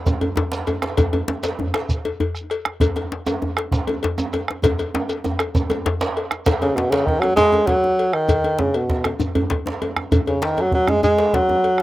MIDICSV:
0, 0, Header, 1, 6, 480
1, 0, Start_track
1, 0, Tempo, 304414
1, 1548, Time_signature, 12, 3, 24, 8
1, 18646, End_track
2, 0, Start_track
2, 0, Title_t, "Tenor saxophone"
2, 0, Program_c, 0, 66
2, 10431, Note_on_c, 0, 49, 80
2, 10657, Note_on_c, 0, 47, 91
2, 10681, Note_off_c, 0, 49, 0
2, 10894, Note_on_c, 0, 49, 86
2, 10918, Note_off_c, 0, 47, 0
2, 11123, Note_on_c, 0, 51, 89
2, 11146, Note_off_c, 0, 49, 0
2, 11352, Note_on_c, 0, 54, 92
2, 11376, Note_off_c, 0, 51, 0
2, 11597, Note_off_c, 0, 54, 0
2, 11607, Note_on_c, 0, 56, 103
2, 12087, Note_on_c, 0, 54, 89
2, 12111, Note_off_c, 0, 56, 0
2, 12829, Note_on_c, 0, 51, 98
2, 12853, Note_off_c, 0, 54, 0
2, 13548, Note_on_c, 0, 49, 84
2, 13572, Note_off_c, 0, 51, 0
2, 13815, Note_on_c, 0, 47, 72
2, 13839, Note_off_c, 0, 49, 0
2, 14346, Note_off_c, 0, 47, 0
2, 16198, Note_on_c, 0, 49, 81
2, 16445, Note_on_c, 0, 51, 91
2, 16468, Note_off_c, 0, 49, 0
2, 16727, Note_on_c, 0, 54, 91
2, 16751, Note_off_c, 0, 51, 0
2, 16934, Note_off_c, 0, 54, 0
2, 16943, Note_on_c, 0, 54, 95
2, 17176, Note_on_c, 0, 56, 104
2, 17199, Note_off_c, 0, 54, 0
2, 17392, Note_off_c, 0, 56, 0
2, 17401, Note_on_c, 0, 56, 96
2, 17888, Note_on_c, 0, 54, 94
2, 17911, Note_off_c, 0, 56, 0
2, 18646, Note_off_c, 0, 54, 0
2, 18646, End_track
3, 0, Start_track
3, 0, Title_t, "Bombo"
3, 98, Note_on_c, 9, 43, 105
3, 256, Note_off_c, 9, 43, 0
3, 822, Note_on_c, 9, 37, 28
3, 979, Note_off_c, 9, 37, 0
3, 1070, Note_on_c, 9, 37, 33
3, 1227, Note_off_c, 9, 37, 0
3, 1295, Note_on_c, 9, 37, 67
3, 1452, Note_off_c, 9, 37, 0
3, 1543, Note_on_c, 9, 43, 93
3, 1701, Note_off_c, 9, 43, 0
3, 2743, Note_on_c, 9, 37, 71
3, 2901, Note_off_c, 9, 37, 0
3, 2979, Note_on_c, 9, 43, 99
3, 3137, Note_off_c, 9, 43, 0
3, 3699, Note_on_c, 9, 37, 29
3, 3857, Note_off_c, 9, 37, 0
3, 3942, Note_on_c, 9, 37, 32
3, 4099, Note_off_c, 9, 37, 0
3, 4182, Note_on_c, 9, 37, 80
3, 4340, Note_off_c, 9, 37, 0
3, 4415, Note_on_c, 9, 43, 110
3, 4573, Note_off_c, 9, 43, 0
3, 5625, Note_on_c, 9, 37, 77
3, 5783, Note_off_c, 9, 37, 0
3, 5858, Note_on_c, 9, 43, 105
3, 6015, Note_off_c, 9, 43, 0
3, 6589, Note_on_c, 9, 37, 33
3, 6747, Note_off_c, 9, 37, 0
3, 6830, Note_on_c, 9, 37, 36
3, 6987, Note_off_c, 9, 37, 0
3, 7068, Note_on_c, 9, 37, 73
3, 7225, Note_off_c, 9, 37, 0
3, 7303, Note_on_c, 9, 43, 108
3, 7461, Note_off_c, 9, 43, 0
3, 8501, Note_on_c, 9, 37, 76
3, 8659, Note_off_c, 9, 37, 0
3, 8745, Note_on_c, 9, 43, 100
3, 8903, Note_off_c, 9, 43, 0
3, 8987, Note_on_c, 9, 37, 32
3, 9145, Note_off_c, 9, 37, 0
3, 9949, Note_on_c, 9, 37, 78
3, 10106, Note_off_c, 9, 37, 0
3, 10193, Note_on_c, 9, 43, 94
3, 10351, Note_off_c, 9, 43, 0
3, 10661, Note_on_c, 9, 37, 33
3, 10819, Note_off_c, 9, 37, 0
3, 11144, Note_on_c, 9, 43, 95
3, 11302, Note_off_c, 9, 43, 0
3, 11383, Note_on_c, 9, 37, 68
3, 11541, Note_off_c, 9, 37, 0
3, 12098, Note_on_c, 9, 43, 83
3, 12256, Note_off_c, 9, 43, 0
3, 12826, Note_on_c, 9, 37, 66
3, 12984, Note_off_c, 9, 37, 0
3, 13063, Note_on_c, 9, 43, 76
3, 13221, Note_off_c, 9, 43, 0
3, 13546, Note_on_c, 9, 37, 27
3, 13703, Note_off_c, 9, 37, 0
3, 14024, Note_on_c, 9, 43, 85
3, 14181, Note_off_c, 9, 43, 0
3, 14259, Note_on_c, 9, 37, 72
3, 14417, Note_off_c, 9, 37, 0
3, 14991, Note_on_c, 9, 43, 81
3, 15148, Note_off_c, 9, 43, 0
3, 15713, Note_on_c, 9, 37, 77
3, 15870, Note_off_c, 9, 37, 0
3, 15952, Note_on_c, 9, 43, 111
3, 16110, Note_off_c, 9, 43, 0
3, 16430, Note_on_c, 9, 37, 33
3, 16587, Note_off_c, 9, 37, 0
3, 16895, Note_on_c, 9, 43, 98
3, 17053, Note_off_c, 9, 43, 0
3, 17148, Note_on_c, 9, 37, 71
3, 17305, Note_off_c, 9, 37, 0
3, 17870, Note_on_c, 9, 43, 83
3, 18027, Note_off_c, 9, 43, 0
3, 18576, Note_on_c, 9, 37, 59
3, 18646, Note_off_c, 9, 37, 0
3, 18646, End_track
4, 0, Start_track
4, 0, Title_t, "Djembe"
4, 94, Note_on_c, 9, 62, 27
4, 103, Note_on_c, 9, 63, 109
4, 252, Note_off_c, 9, 62, 0
4, 261, Note_off_c, 9, 63, 0
4, 336, Note_on_c, 9, 64, 79
4, 494, Note_off_c, 9, 64, 0
4, 563, Note_on_c, 9, 63, 78
4, 585, Note_on_c, 9, 62, 80
4, 585, Note_on_c, 9, 64, 74
4, 721, Note_off_c, 9, 63, 0
4, 743, Note_off_c, 9, 62, 0
4, 743, Note_off_c, 9, 64, 0
4, 814, Note_on_c, 9, 62, 80
4, 971, Note_off_c, 9, 62, 0
4, 1065, Note_on_c, 9, 64, 70
4, 1222, Note_off_c, 9, 64, 0
4, 1299, Note_on_c, 9, 62, 74
4, 1313, Note_off_c, 9, 62, 0
4, 1313, Note_on_c, 9, 62, 55
4, 1471, Note_off_c, 9, 62, 0
4, 1543, Note_on_c, 9, 64, 77
4, 1547, Note_on_c, 9, 63, 92
4, 1701, Note_off_c, 9, 64, 0
4, 1705, Note_off_c, 9, 63, 0
4, 1782, Note_on_c, 9, 63, 61
4, 1786, Note_on_c, 9, 64, 73
4, 1940, Note_off_c, 9, 63, 0
4, 1943, Note_off_c, 9, 64, 0
4, 2019, Note_on_c, 9, 62, 80
4, 2020, Note_on_c, 9, 63, 80
4, 2177, Note_off_c, 9, 62, 0
4, 2178, Note_off_c, 9, 63, 0
4, 2263, Note_on_c, 9, 62, 83
4, 2421, Note_off_c, 9, 62, 0
4, 2505, Note_on_c, 9, 64, 69
4, 2515, Note_off_c, 9, 64, 0
4, 2515, Note_on_c, 9, 62, 23
4, 2515, Note_on_c, 9, 64, 72
4, 2673, Note_off_c, 9, 62, 0
4, 2673, Note_off_c, 9, 64, 0
4, 2747, Note_on_c, 9, 62, 74
4, 2904, Note_off_c, 9, 62, 0
4, 3003, Note_on_c, 9, 62, 23
4, 3161, Note_off_c, 9, 62, 0
4, 3233, Note_on_c, 9, 63, 61
4, 3391, Note_off_c, 9, 63, 0
4, 3471, Note_on_c, 9, 64, 74
4, 3629, Note_off_c, 9, 64, 0
4, 4190, Note_on_c, 9, 62, 52
4, 4348, Note_off_c, 9, 62, 0
4, 4424, Note_on_c, 9, 63, 95
4, 4436, Note_on_c, 9, 64, 70
4, 4581, Note_off_c, 9, 63, 0
4, 4594, Note_off_c, 9, 64, 0
4, 4665, Note_on_c, 9, 63, 76
4, 4678, Note_off_c, 9, 63, 0
4, 4678, Note_on_c, 9, 63, 54
4, 4836, Note_off_c, 9, 63, 0
4, 4919, Note_on_c, 9, 62, 69
4, 5076, Note_off_c, 9, 62, 0
4, 5148, Note_on_c, 9, 63, 106
4, 5306, Note_off_c, 9, 63, 0
4, 5391, Note_on_c, 9, 63, 67
4, 5398, Note_on_c, 9, 62, 23
4, 5398, Note_on_c, 9, 64, 71
4, 5549, Note_off_c, 9, 63, 0
4, 5556, Note_off_c, 9, 62, 0
4, 5556, Note_off_c, 9, 64, 0
4, 5651, Note_on_c, 9, 62, 58
4, 5809, Note_off_c, 9, 62, 0
4, 5870, Note_on_c, 9, 63, 106
4, 5884, Note_on_c, 9, 62, 26
4, 6028, Note_off_c, 9, 63, 0
4, 6042, Note_off_c, 9, 62, 0
4, 6112, Note_on_c, 9, 63, 78
4, 6138, Note_off_c, 9, 63, 0
4, 6138, Note_on_c, 9, 63, 58
4, 6295, Note_off_c, 9, 63, 0
4, 6372, Note_on_c, 9, 62, 68
4, 6372, Note_on_c, 9, 64, 62
4, 6530, Note_off_c, 9, 62, 0
4, 6530, Note_off_c, 9, 64, 0
4, 6591, Note_on_c, 9, 63, 103
4, 6749, Note_off_c, 9, 63, 0
4, 6837, Note_on_c, 9, 63, 79
4, 6995, Note_off_c, 9, 63, 0
4, 7103, Note_on_c, 9, 62, 54
4, 7261, Note_off_c, 9, 62, 0
4, 7322, Note_on_c, 9, 63, 109
4, 7332, Note_on_c, 9, 64, 68
4, 7480, Note_off_c, 9, 63, 0
4, 7490, Note_off_c, 9, 64, 0
4, 7568, Note_on_c, 9, 62, 22
4, 7568, Note_on_c, 9, 63, 55
4, 7726, Note_off_c, 9, 62, 0
4, 7726, Note_off_c, 9, 63, 0
4, 7796, Note_on_c, 9, 63, 105
4, 7801, Note_on_c, 9, 62, 76
4, 7954, Note_off_c, 9, 63, 0
4, 7958, Note_off_c, 9, 62, 0
4, 8048, Note_on_c, 9, 62, 24
4, 8206, Note_off_c, 9, 62, 0
4, 8268, Note_on_c, 9, 63, 93
4, 8278, Note_on_c, 9, 62, 24
4, 8278, Note_on_c, 9, 64, 72
4, 8425, Note_off_c, 9, 63, 0
4, 8436, Note_off_c, 9, 62, 0
4, 8436, Note_off_c, 9, 64, 0
4, 8516, Note_on_c, 9, 62, 53
4, 8673, Note_off_c, 9, 62, 0
4, 8748, Note_on_c, 9, 63, 104
4, 8906, Note_off_c, 9, 63, 0
4, 8984, Note_on_c, 9, 63, 96
4, 9008, Note_off_c, 9, 63, 0
4, 9008, Note_on_c, 9, 62, 26
4, 9008, Note_on_c, 9, 63, 65
4, 9166, Note_off_c, 9, 62, 0
4, 9166, Note_off_c, 9, 63, 0
4, 9240, Note_on_c, 9, 62, 77
4, 9240, Note_on_c, 9, 64, 70
4, 9398, Note_off_c, 9, 62, 0
4, 9398, Note_off_c, 9, 64, 0
4, 9476, Note_on_c, 9, 62, 101
4, 9489, Note_off_c, 9, 62, 0
4, 9489, Note_on_c, 9, 62, 24
4, 9646, Note_off_c, 9, 62, 0
4, 9958, Note_on_c, 9, 62, 57
4, 10115, Note_off_c, 9, 62, 0
4, 10190, Note_on_c, 9, 62, 107
4, 10213, Note_on_c, 9, 64, 61
4, 10347, Note_off_c, 9, 62, 0
4, 10370, Note_off_c, 9, 64, 0
4, 10432, Note_on_c, 9, 63, 76
4, 10449, Note_off_c, 9, 63, 0
4, 10449, Note_on_c, 9, 63, 54
4, 10607, Note_off_c, 9, 63, 0
4, 10673, Note_on_c, 9, 63, 84
4, 10690, Note_on_c, 9, 62, 69
4, 10830, Note_off_c, 9, 63, 0
4, 10848, Note_off_c, 9, 62, 0
4, 10916, Note_on_c, 9, 62, 95
4, 11074, Note_off_c, 9, 62, 0
4, 11169, Note_on_c, 9, 63, 71
4, 11327, Note_off_c, 9, 63, 0
4, 11395, Note_on_c, 9, 63, 50
4, 11405, Note_off_c, 9, 63, 0
4, 11405, Note_on_c, 9, 63, 73
4, 11563, Note_off_c, 9, 63, 0
4, 11623, Note_on_c, 9, 62, 88
4, 11625, Note_on_c, 9, 64, 73
4, 11781, Note_off_c, 9, 62, 0
4, 11782, Note_off_c, 9, 64, 0
4, 11865, Note_on_c, 9, 63, 81
4, 12022, Note_off_c, 9, 63, 0
4, 12099, Note_on_c, 9, 62, 63
4, 12108, Note_on_c, 9, 63, 78
4, 12256, Note_off_c, 9, 62, 0
4, 12266, Note_off_c, 9, 63, 0
4, 12360, Note_on_c, 9, 63, 54
4, 12518, Note_off_c, 9, 63, 0
4, 13065, Note_on_c, 9, 64, 62
4, 13222, Note_off_c, 9, 64, 0
4, 13311, Note_on_c, 9, 63, 51
4, 13469, Note_off_c, 9, 63, 0
4, 13538, Note_on_c, 9, 62, 66
4, 13545, Note_on_c, 9, 64, 92
4, 13695, Note_off_c, 9, 62, 0
4, 13703, Note_off_c, 9, 64, 0
4, 14026, Note_on_c, 9, 62, 70
4, 14184, Note_off_c, 9, 62, 0
4, 14266, Note_on_c, 9, 63, 66
4, 14268, Note_off_c, 9, 63, 0
4, 14268, Note_on_c, 9, 62, 50
4, 14268, Note_on_c, 9, 63, 48
4, 14426, Note_off_c, 9, 62, 0
4, 14426, Note_off_c, 9, 63, 0
4, 14500, Note_on_c, 9, 64, 78
4, 14508, Note_on_c, 9, 63, 74
4, 14658, Note_off_c, 9, 64, 0
4, 14666, Note_off_c, 9, 63, 0
4, 14748, Note_on_c, 9, 64, 104
4, 14906, Note_off_c, 9, 64, 0
4, 14979, Note_on_c, 9, 62, 69
4, 15137, Note_off_c, 9, 62, 0
4, 15229, Note_on_c, 9, 63, 56
4, 15246, Note_on_c, 9, 62, 78
4, 15387, Note_off_c, 9, 63, 0
4, 15404, Note_off_c, 9, 62, 0
4, 15481, Note_on_c, 9, 63, 71
4, 15639, Note_off_c, 9, 63, 0
4, 15712, Note_on_c, 9, 63, 69
4, 15714, Note_on_c, 9, 62, 49
4, 15870, Note_off_c, 9, 63, 0
4, 15872, Note_off_c, 9, 62, 0
4, 15957, Note_on_c, 9, 64, 102
4, 15959, Note_off_c, 9, 64, 0
4, 15959, Note_on_c, 9, 64, 71
4, 16116, Note_off_c, 9, 64, 0
4, 16199, Note_on_c, 9, 63, 53
4, 16357, Note_off_c, 9, 63, 0
4, 16429, Note_on_c, 9, 62, 77
4, 16438, Note_off_c, 9, 62, 0
4, 16438, Note_on_c, 9, 62, 79
4, 16596, Note_off_c, 9, 62, 0
4, 16672, Note_on_c, 9, 63, 72
4, 16829, Note_off_c, 9, 63, 0
4, 16910, Note_on_c, 9, 63, 66
4, 17068, Note_off_c, 9, 63, 0
4, 17152, Note_on_c, 9, 64, 99
4, 17163, Note_on_c, 9, 62, 53
4, 17163, Note_on_c, 9, 63, 53
4, 17309, Note_off_c, 9, 64, 0
4, 17321, Note_off_c, 9, 62, 0
4, 17321, Note_off_c, 9, 63, 0
4, 17395, Note_on_c, 9, 64, 74
4, 17553, Note_off_c, 9, 64, 0
4, 17636, Note_on_c, 9, 62, 74
4, 17794, Note_off_c, 9, 62, 0
4, 17880, Note_on_c, 9, 63, 71
4, 17884, Note_on_c, 9, 62, 60
4, 18037, Note_off_c, 9, 63, 0
4, 18042, Note_off_c, 9, 62, 0
4, 18122, Note_on_c, 9, 63, 77
4, 18126, Note_off_c, 9, 63, 0
4, 18126, Note_on_c, 9, 63, 53
4, 18283, Note_off_c, 9, 63, 0
4, 18646, End_track
5, 0, Start_track
5, 0, Title_t, "Shekere"
5, 103, Note_on_c, 9, 82, 61
5, 260, Note_off_c, 9, 82, 0
5, 828, Note_on_c, 9, 82, 48
5, 986, Note_off_c, 9, 82, 0
5, 1056, Note_on_c, 9, 82, 17
5, 1214, Note_off_c, 9, 82, 0
5, 1542, Note_on_c, 9, 82, 61
5, 1700, Note_off_c, 9, 82, 0
5, 2263, Note_on_c, 9, 82, 50
5, 2420, Note_off_c, 9, 82, 0
5, 2990, Note_on_c, 9, 82, 62
5, 3148, Note_off_c, 9, 82, 0
5, 3716, Note_on_c, 9, 82, 44
5, 3873, Note_off_c, 9, 82, 0
5, 3957, Note_on_c, 9, 82, 17
5, 4115, Note_off_c, 9, 82, 0
5, 4443, Note_on_c, 9, 82, 62
5, 4601, Note_off_c, 9, 82, 0
5, 5150, Note_on_c, 9, 82, 47
5, 5307, Note_off_c, 9, 82, 0
5, 5881, Note_on_c, 9, 82, 59
5, 6039, Note_off_c, 9, 82, 0
5, 6599, Note_on_c, 9, 82, 45
5, 6757, Note_off_c, 9, 82, 0
5, 6820, Note_on_c, 9, 82, 17
5, 6977, Note_off_c, 9, 82, 0
5, 7311, Note_on_c, 9, 82, 62
5, 7469, Note_off_c, 9, 82, 0
5, 7550, Note_on_c, 9, 82, 19
5, 7708, Note_off_c, 9, 82, 0
5, 8031, Note_on_c, 9, 82, 42
5, 8188, Note_off_c, 9, 82, 0
5, 8276, Note_on_c, 9, 82, 18
5, 8434, Note_off_c, 9, 82, 0
5, 8511, Note_on_c, 9, 82, 18
5, 8669, Note_off_c, 9, 82, 0
5, 8756, Note_on_c, 9, 82, 57
5, 8914, Note_off_c, 9, 82, 0
5, 8997, Note_on_c, 9, 82, 17
5, 9154, Note_off_c, 9, 82, 0
5, 9476, Note_on_c, 9, 82, 44
5, 9634, Note_off_c, 9, 82, 0
5, 9955, Note_on_c, 9, 82, 17
5, 10113, Note_off_c, 9, 82, 0
5, 10182, Note_on_c, 9, 82, 55
5, 10340, Note_off_c, 9, 82, 0
5, 11639, Note_on_c, 9, 82, 63
5, 11796, Note_off_c, 9, 82, 0
5, 13071, Note_on_c, 9, 82, 57
5, 13228, Note_off_c, 9, 82, 0
5, 14505, Note_on_c, 9, 82, 58
5, 14662, Note_off_c, 9, 82, 0
5, 15958, Note_on_c, 9, 82, 63
5, 16116, Note_off_c, 9, 82, 0
5, 17403, Note_on_c, 9, 82, 66
5, 17561, Note_off_c, 9, 82, 0
5, 18646, End_track
6, 0, Start_track
6, 0, Title_t, "Drums"
6, 335, Note_on_c, 9, 56, 49
6, 493, Note_off_c, 9, 56, 0
6, 585, Note_on_c, 9, 56, 43
6, 743, Note_off_c, 9, 56, 0
6, 1059, Note_on_c, 9, 56, 53
6, 1217, Note_off_c, 9, 56, 0
6, 1536, Note_on_c, 9, 56, 69
6, 1694, Note_off_c, 9, 56, 0
6, 1781, Note_on_c, 9, 56, 52
6, 1939, Note_off_c, 9, 56, 0
6, 2259, Note_on_c, 9, 56, 52
6, 2417, Note_off_c, 9, 56, 0
6, 2746, Note_on_c, 9, 56, 49
6, 2903, Note_off_c, 9, 56, 0
6, 3235, Note_on_c, 9, 56, 53
6, 3392, Note_off_c, 9, 56, 0
6, 3477, Note_on_c, 9, 56, 47
6, 3635, Note_off_c, 9, 56, 0
6, 3957, Note_on_c, 9, 56, 56
6, 4115, Note_off_c, 9, 56, 0
6, 4434, Note_on_c, 9, 56, 68
6, 4592, Note_off_c, 9, 56, 0
6, 4675, Note_on_c, 9, 56, 56
6, 4833, Note_off_c, 9, 56, 0
6, 5158, Note_on_c, 9, 56, 54
6, 5315, Note_off_c, 9, 56, 0
6, 5639, Note_on_c, 9, 56, 48
6, 5797, Note_off_c, 9, 56, 0
6, 6108, Note_on_c, 9, 56, 55
6, 6266, Note_off_c, 9, 56, 0
6, 6351, Note_on_c, 9, 56, 56
6, 6509, Note_off_c, 9, 56, 0
6, 6837, Note_on_c, 9, 56, 53
6, 6994, Note_off_c, 9, 56, 0
6, 7312, Note_on_c, 9, 56, 79
6, 7469, Note_off_c, 9, 56, 0
6, 7556, Note_on_c, 9, 56, 57
6, 7714, Note_off_c, 9, 56, 0
6, 8031, Note_on_c, 9, 56, 56
6, 8188, Note_off_c, 9, 56, 0
6, 8509, Note_on_c, 9, 56, 55
6, 8666, Note_off_c, 9, 56, 0
6, 8989, Note_on_c, 9, 56, 56
6, 9147, Note_off_c, 9, 56, 0
6, 9237, Note_on_c, 9, 56, 56
6, 9394, Note_off_c, 9, 56, 0
6, 9726, Note_on_c, 9, 56, 53
6, 9883, Note_off_c, 9, 56, 0
6, 10201, Note_on_c, 9, 56, 57
6, 10359, Note_off_c, 9, 56, 0
6, 10441, Note_on_c, 9, 56, 49
6, 10598, Note_off_c, 9, 56, 0
6, 10921, Note_on_c, 9, 56, 50
6, 11079, Note_off_c, 9, 56, 0
6, 11405, Note_on_c, 9, 56, 43
6, 11562, Note_off_c, 9, 56, 0
6, 11878, Note_on_c, 9, 56, 48
6, 12036, Note_off_c, 9, 56, 0
6, 12125, Note_on_c, 9, 56, 45
6, 12283, Note_off_c, 9, 56, 0
6, 12602, Note_on_c, 9, 56, 49
6, 12760, Note_off_c, 9, 56, 0
6, 13075, Note_on_c, 9, 56, 62
6, 13232, Note_off_c, 9, 56, 0
6, 13315, Note_on_c, 9, 56, 49
6, 13472, Note_off_c, 9, 56, 0
6, 13786, Note_on_c, 9, 56, 57
6, 13944, Note_off_c, 9, 56, 0
6, 14267, Note_on_c, 9, 56, 46
6, 14425, Note_off_c, 9, 56, 0
6, 14747, Note_on_c, 9, 56, 50
6, 14905, Note_off_c, 9, 56, 0
6, 14998, Note_on_c, 9, 56, 46
6, 15156, Note_off_c, 9, 56, 0
6, 15480, Note_on_c, 9, 56, 48
6, 15638, Note_off_c, 9, 56, 0
6, 15958, Note_on_c, 9, 56, 58
6, 16116, Note_off_c, 9, 56, 0
6, 16201, Note_on_c, 9, 56, 49
6, 16358, Note_off_c, 9, 56, 0
6, 16679, Note_on_c, 9, 56, 46
6, 16837, Note_off_c, 9, 56, 0
6, 17637, Note_on_c, 9, 56, 47
6, 17794, Note_off_c, 9, 56, 0
6, 17879, Note_on_c, 9, 56, 47
6, 18037, Note_off_c, 9, 56, 0
6, 18357, Note_on_c, 9, 56, 46
6, 18514, Note_off_c, 9, 56, 0
6, 18646, End_track
0, 0, End_of_file